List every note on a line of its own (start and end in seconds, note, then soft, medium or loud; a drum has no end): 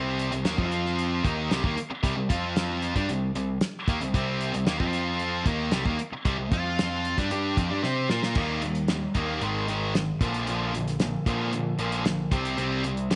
0.00 0.29 C2 medium
0.00 0.31 C3 medium
0.00 0.31 G3 medium
0.00 0.32 C4 loud
0.19 closed hi-hat medium
0.32 0.44 C2 medium
0.32 0.45 C3 medium
0.32 0.46 G3 medium
0.32 closed hi-hat medium
0.45 0.58 D#2 medium
0.45 0.57 D#3 medium
0.45 0.58 A#3 medium
0.45 snare loud
0.45 closed hi-hat medium
0.58 1.20 F2 medium
0.58 1.23 F3 medium
0.58 1.24 C4 medium
0.58 1.24 F4 medium
0.58 kick medium
0.72 closed hi-hat medium
0.86 snare soft
0.99 closed hi-hat medium
1.24 1.49 D#2 medium
1.24 1.50 D#3 medium
1.24 1.50 A#3 medium
1.24 1.50 D#4 loud
1.24 kick loud
1.24 closed hi-hat medium
1.51 1.63 C2 medium
1.51 1.63 C3 medium
1.51 1.63 G3 loud
1.51 snare medium
1.51 closed hi-hat medium
1.64 1.76 D#2 medium
1.64 1.76 D#3 medium
1.64 1.77 A#3 medium
1.64 kick medium
1.77 muted picked electric bass stroke soft
1.77 muted distorted electric guitar stroke medium
1.77 muted overdriven electric guitar stroke medium
1.77 closed hi-hat medium
1.90 muted picked electric bass stroke soft
1.90 muted distorted electric guitar stroke medium
1.90 muted overdriven electric guitar stroke soft
2.03 2.16 C2 medium
2.03 2.15 C3 medium
2.03 2.16 G3 medium
2.03 kick loud
2.03 closed hi-hat medium
2.16 2.29 C2 medium
2.16 2.29 C3 medium
2.16 2.29 G3 medium
2.29 2.92 F2 medium
2.29 2.95 F3 medium
2.29 2.95 C4 medium
2.29 2.95 F4 medium
2.29 kick loud
2.29 closed hi-hat medium
2.56 snare loud
2.56 closed hi-hat medium
2.82 closed hi-hat medium
2.95 3.08 G2 medium
2.95 3.08 G3 medium
2.95 3.08 D4 medium
2.95 kick medium
2.95 closed hi-hat medium
3.09 3.33 C2 medium
3.09 3.30 C3 medium
3.09 3.30 G3 medium
3.09 closed hi-hat medium
3.34 3.59 C2 medium
3.34 3.57 C3 medium
3.34 3.57 G3 medium
3.34 closed hi-hat medium
3.61 snare loud
3.61 closed hi-hat medium
3.88 4.00 D#2 medium
3.88 4.01 D#3 medium
3.88 4.01 A#3 medium
3.88 kick loud
3.88 closed hi-hat medium
4.01 4.13 C2 medium
4.01 4.13 C3 medium
4.01 4.14 G3 medium
4.01 closed hi-hat medium
4.14 4.51 C2 medium
4.14 4.53 C3 medium
4.14 4.53 G3 medium
4.14 4.54 C4 loud
4.14 kick loud
4.14 closed hi-hat medium
4.41 closed hi-hat medium
4.54 4.66 C2 medium
4.54 4.66 C3 medium
4.54 4.67 G3 medium
4.54 closed hi-hat medium
4.66 4.79 D#2 medium
4.66 4.80 D#3 medium
4.66 4.80 A#3 medium
4.66 snare loud
4.66 closed hi-hat medium
4.80 5.42 F2 medium
4.80 5.45 F3 medium
4.80 5.46 C4 medium
4.80 5.46 F4 medium
4.80 kick medium
4.93 closed hi-hat medium
5.19 closed hi-hat soft
5.46 5.70 D#2 medium
5.46 5.72 D#3 medium
5.46 5.72 A#3 medium
5.46 5.72 D#4 medium
5.46 kick medium
5.46 closed hi-hat medium
5.71 5.85 C2 medium
5.71 5.85 C3 medium
5.71 5.86 G3 loud
5.71 snare loud
5.71 closed hi-hat medium
5.85 5.98 D#2 medium
5.85 5.98 D#3 medium
5.85 5.98 A#3 medium
5.85 kick loud
5.99 muted distorted electric guitar stroke medium
5.99 muted overdriven electric guitar stroke medium
5.99 closed hi-hat medium
6.12 muted picked electric bass stroke soft
6.12 muted overdriven electric guitar stroke medium
6.12 muted distorted electric guitar stroke medium
6.25 6.38 C2 medium
6.25 6.37 C3 medium
6.25 6.37 G3 loud
6.25 kick loud
6.25 closed hi-hat medium
6.38 6.51 C2 medium
6.38 6.52 C3 medium
6.38 6.53 G3 medium
6.52 7.14 F2 medium
6.52 7.17 F3 medium
6.52 7.17 C4 medium
6.52 7.18 F4 medium
6.52 kick loud
6.52 closed hi-hat medium
6.79 snare loud
6.79 closed hi-hat medium
7.05 closed hi-hat medium
7.18 7.30 G2 medium
7.18 7.30 G3 medium
7.18 7.30 D4 medium
7.18 kick medium
7.18 snare soft
7.18 closed hi-hat medium
7.31 7.56 G2 medium
7.31 7.57 G3 medium
7.31 7.57 D4 medium
7.31 7.57 G4 medium
7.31 closed hi-hat medium
7.57 7.70 F2 medium
7.57 7.70 F3 medium
7.57 7.69 C4 medium
7.57 kick medium
7.57 closed hi-hat medium
7.70 7.83 G2 medium
7.70 7.82 G3 medium
7.70 7.83 D4 medium
7.83 8.09 C3 medium
7.83 8.09 C4 medium
7.83 8.09 G4 loud
7.83 8.09 C5 loud
7.83 snare medium
8.10 8.35 A#2 medium
8.10 8.36 A#3 medium
8.10 8.36 F4 medium
8.10 8.36 A#4 medium
8.10 snare medium
8.23 snare medium
8.35 9.06 D#2 medium
8.35 8.61 D#3 medium
8.35 8.61 G3 medium
8.35 8.62 A#3 medium
8.35 8.62 D#4 loud
8.35 kick loud
8.35 crash medium
8.62 8.86 D#3 medium
8.62 8.86 G3 medium
8.62 8.87 A#3 medium
8.62 closed hi-hat medium
8.75 closed hi-hat medium
8.88 9.13 D#3 medium
8.88 9.13 G3 medium
8.88 9.13 A#3 medium
8.88 snare loud
8.88 closed hi-hat medium
9.15 9.39 D#2 medium
9.15 9.40 D#3 medium
9.15 9.41 G3 medium
9.15 9.41 A#3 medium
9.15 9.41 D#4 loud
9.15 kick medium
9.15 closed hi-hat medium
9.41 10.12 G#1 medium
9.41 9.67 G#2 medium
9.41 9.67 D#3 medium
9.41 9.67 G#3 medium
9.41 closed hi-hat medium
9.68 9.93 G#2 medium
9.68 9.93 D#3 medium
9.68 9.94 G#3 medium
9.68 closed hi-hat medium
9.94 10.18 G#2 medium
9.94 10.18 D#3 medium
9.94 snare loud
9.94 closed hi-hat medium
10.21 11.15 A#1 medium
10.21 10.46 A#2 medium
10.21 10.46 D3 medium
10.21 10.46 F3 medium
10.21 10.46 A#3 medium
10.21 kick loud
10.21 closed hi-hat medium
10.34 closed hi-hat medium
10.47 10.73 A#2 medium
10.47 10.73 D3 medium
10.47 10.73 F3 loud
10.47 10.73 A#3 medium
10.47 closed hi-hat medium
10.74 10.98 A#2 medium
10.74 10.98 D3 medium
10.74 10.98 F3 medium
10.74 closed hi-hat medium
10.88 snare soft
10.88 closed hi-hat medium
11.00 11.24 A#2 medium
11.00 11.24 D3 medium
11.00 11.25 F3 medium
11.00 snare loud
11.00 closed hi-hat medium
11.26 11.73 A#2 medium
11.26 11.51 A#2 medium
11.26 11.51 D3 medium
11.26 11.52 F3 medium
11.26 11.52 A#3 medium
11.26 kick medium
11.26 closed hi-hat medium
11.53 11.76 A#2 medium
11.53 11.77 D3 medium
11.53 11.77 F3 medium
11.53 closed hi-hat medium
11.79 12.26 A#1 medium
11.79 12.04 A#2 medium
11.79 12.04 D3 medium
11.79 12.04 F3 loud
11.79 12.05 A#3 loud
11.79 closed hi-hat medium
11.92 closed hi-hat medium
12.05 12.29 A#2 medium
12.05 12.29 D3 medium
12.05 12.30 F3 medium
12.05 snare loud
12.05 closed hi-hat medium
12.31 12.55 C2 medium
12.31 12.56 C3 loud
12.31 12.57 G3 medium
12.31 12.57 C4 loud
12.31 kick loud
12.31 closed hi-hat medium
12.45 closed hi-hat medium
12.58 13.15 C2 loud
12.58 12.83 C3 medium
12.58 12.83 G3 medium
12.58 12.83 C4 medium
12.58 closed hi-hat medium
12.84 13.08 C3 medium
12.84 13.08 G3 medium
12.84 closed hi-hat medium
12.97 closed hi-hat medium
13.11 13.15 C3 medium
13.11 13.15 G3 medium
13.11 snare loud
13.11 closed hi-hat medium